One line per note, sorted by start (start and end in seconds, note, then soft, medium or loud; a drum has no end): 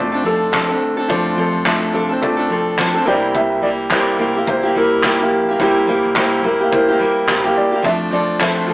0.00 0.82 F1 medium
0.00 1.08 A3 medium
0.00 0.14 C4 soft
0.00 0.13 D4 soft
0.00 1.09 F4 medium
0.00 0.11 A4 soft
0.00 0.27 C5 medium
0.00 3.08 C5 medium
0.00 1.10 D5 medium
0.12 0.23 C4 soft
0.12 0.24 D4 soft
0.12 0.25 A4 medium
0.23 0.51 F3 soft
0.23 0.52 C4 medium
0.23 0.52 D4 medium
0.23 0.53 A4 medium
0.23 1.13 A4 loud
0.52 0.70 F3 medium
0.52 0.70 C4 medium
0.52 0.69 D4 medium
0.52 0.67 A4 medium
0.52 kick loud
0.52 clap loud
0.69 0.99 C4 soft
0.69 0.97 D4 soft
0.69 0.96 A4 medium
0.82 1.08 G1 medium
0.97 1.08 C4 soft
0.97 1.08 D4 soft
0.97 1.09 A4 soft
1.08 1.52 F1 medium
1.08 1.35 F3 medium
1.08 1.56 A3 medium
1.08 1.37 C4 medium
1.08 1.38 D4 medium
1.08 1.56 F4 medium
1.08 1.39 A4 medium
1.08 1.37 C5 medium
1.08 1.57 D5 medium
1.08 kick medium
1.36 1.64 F3 medium
1.36 1.65 C4 medium
1.36 1.65 D4 medium
1.36 1.66 A4 medium
1.36 1.96 C5 medium
1.54 1.91 F1 medium
1.65 1.91 F3 medium
1.65 2.12 A3 medium
1.65 1.92 C4 medium
1.65 1.93 D4 medium
1.65 2.13 F4 medium
1.65 1.94 A4 medium
1.65 2.13 E5 medium
1.65 kick medium
1.65 clap loud
1.92 2.79 C2 medium
1.92 2.10 F3 medium
1.92 2.11 C4 medium
1.92 2.10 D4 medium
1.92 2.01 A4 medium
1.92 2.08 A4 medium
2.09 2.39 C4 soft
2.09 2.37 D4 soft
2.09 2.36 A4 medium
2.21 3.07 A3 medium
2.21 3.07 F4 medium
2.21 2.80 A4 medium
2.21 3.08 D5 medium
2.21 kick loud
2.37 2.49 C4 soft
2.37 2.50 D4 soft
2.37 2.50 A4 soft
2.49 2.76 F3 soft
2.49 2.77 C4 medium
2.49 2.78 D4 medium
2.49 2.79 A4 medium
2.77 3.05 D2 medium
2.77 2.95 F3 medium
2.77 2.96 C4 medium
2.77 2.96 D4 medium
2.77 2.93 A4 medium
2.77 3.08 C5 medium
2.77 kick loud
2.77 clap loud
2.95 3.06 C4 soft
2.95 3.07 D4 soft
2.95 3.07 A4 medium
3.05 4.15 C2 medium
3.05 3.63 C3 medium
3.05 3.61 G3 medium
3.05 3.76 A#3 medium
3.05 3.62 A#3 medium
3.05 3.15 D4 soft
3.05 3.63 E4 medium
3.05 3.64 G4 medium
3.05 3.77 C5 medium
3.05 3.37 D5 medium
3.13 3.80 E4 medium
3.35 3.64 E5 loud
3.35 kick medium
3.62 3.90 G3 medium
3.62 3.90 A#3 medium
3.62 3.90 E4 medium
3.62 3.91 G4 medium
3.62 3.69 D5 medium
3.90 4.19 C3 medium
3.90 4.17 G3 medium
3.90 4.37 A#3 medium
3.90 4.18 A#3 medium
3.90 4.38 E4 medium
3.90 4.19 E4 medium
3.90 4.20 G4 medium
3.90 4.44 C5 loud
3.90 4.38 D5 medium
3.90 kick medium
3.90 clap loud
4.18 4.45 C2 medium
4.18 4.36 G3 medium
4.18 4.36 A#3 medium
4.18 4.36 E4 medium
4.18 4.34 G4 medium
4.35 4.66 A#3 soft
4.35 4.64 E4 soft
4.35 4.62 G4 medium
4.46 5.28 C2 medium
4.46 5.36 A#3 medium
4.46 5.36 E4 medium
4.46 5.37 C5 medium
4.46 4.55 C5 medium
4.46 kick loud
4.63 4.75 A#3 soft
4.63 4.76 E4 medium
4.63 4.75 G4 medium
4.75 5.03 G3 medium
4.75 5.04 A#3 medium
4.75 5.04 E4 medium
4.75 5.05 G4 medium
4.75 5.63 A#4 medium
5.03 5.21 C3 medium
5.03 5.21 G3 medium
5.03 5.21 A#3 medium
5.03 5.21 E4 medium
5.03 5.19 G4 medium
5.03 kick loud
5.03 clap loud
5.20 5.50 A#3 soft
5.20 5.50 E4 soft
5.20 5.47 G4 medium
5.32 5.58 A#1 medium
5.49 5.61 A#3 soft
5.49 5.61 E4 soft
5.49 5.60 G4 soft
5.59 6.01 C2 medium
5.59 5.88 C3 medium
5.59 5.86 G3 medium
5.59 6.06 A#3 medium
5.59 5.87 A#3 medium
5.59 6.06 E4 medium
5.59 5.89 E4 medium
5.59 6.07 G4 medium
5.59 5.89 G4 medium
5.59 5.86 C5 medium
5.59 kick loud
5.87 6.14 G3 medium
5.87 6.15 A#3 medium
5.87 6.16 E4 medium
5.87 6.16 G4 medium
5.87 6.46 C5 medium
6.05 6.41 C2 medium
6.15 6.44 C3 medium
6.15 6.42 G3 medium
6.15 6.62 A#3 medium
6.15 6.43 A#3 medium
6.15 6.62 E4 medium
6.15 6.44 E4 medium
6.15 6.45 G4 medium
6.15 6.63 C5 medium
6.15 kick loud
6.15 clap loud
6.43 7.24 G1 medium
6.43 6.60 G3 medium
6.43 6.61 A#3 medium
6.43 6.61 E4 medium
6.43 6.59 G4 medium
6.43 6.71 A#4 medium
6.61 6.91 A#3 soft
6.61 6.89 E4 soft
6.61 6.87 G4 soft
6.71 7.60 A#3 medium
6.71 7.60 E4 medium
6.71 7.30 A#4 medium
6.71 7.61 C5 medium
6.71 kick loud
6.88 6.99 A#3 soft
6.88 7.01 E4 soft
6.88 7.00 G4 soft
6.99 7.27 G3 medium
6.99 7.27 A#3 medium
6.99 7.28 E4 medium
6.99 7.29 G4 medium
7.27 7.54 D2 medium
7.27 7.45 C3 medium
7.27 7.45 G3 medium
7.27 7.45 A#3 medium
7.27 7.45 E4 medium
7.27 7.43 G4 medium
7.27 7.58 C5 medium
7.27 kick medium
7.27 clap loud
7.44 7.75 A#3 soft
7.44 7.72 E4 soft
7.44 7.71 G4 medium
7.57 7.83 G1 medium
7.57 7.86 D5 medium
7.72 7.83 A#3 soft
7.72 7.84 E4 soft
7.72 7.84 G4 soft
7.82 8.65 F1 medium
7.82 8.10 F3 medium
7.82 8.31 A3 medium
7.82 8.11 C4 medium
7.82 8.12 D4 medium
7.82 8.31 F4 medium
7.82 8.13 A4 medium
7.82 8.32 D5 medium
7.82 7.92 E5 medium
7.82 kick loud
8.11 8.38 F3 medium
8.11 8.39 C4 medium
8.11 8.40 D4 medium
8.11 8.41 A4 medium
8.11 8.42 D5 medium
8.39 8.65 F3 medium
8.39 8.73 A3 medium
8.39 8.67 C4 medium
8.39 8.68 D4 medium
8.39 8.73 F4 medium
8.39 8.69 A4 medium
8.39 8.73 C5 medium
8.39 8.73 E5 medium
8.39 kick medium
8.39 clap loud
8.66 8.73 F1 loud
8.66 8.73 F3 medium
8.66 8.73 C4 medium
8.66 8.73 D4 medium
8.66 8.73 A4 medium